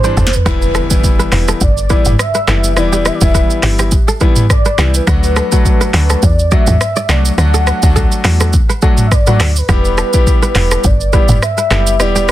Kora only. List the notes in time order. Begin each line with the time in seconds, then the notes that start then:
0.04 C5
0.17 A4
0.46 B4
0.75 A4
1.19 B4
1.48 A4
1.90 B4
2.35 B4
2.48 A4
2.92 G4
3.05 B4
3.35 B4
3.63 G4
3.79 G4
4.08 A4
4.21 B4
4.66 B4
4.79 G4
5.07 B4
5.36 A4
5.81 B4
6.10 A4
6.52 D5
6.97 D5
7.09 B4
7.54 A4
7.67 B4
7.96 A4
8.25 B4
8.41 A4
8.69 B4
8.82 A4
9.27 B4
9.40 A4
9.69 B4
9.98 A4
10.43 B4
10.71 A4
11.13 B4
11.58 B4
11.71 A4
12.16 G4
12.29 B4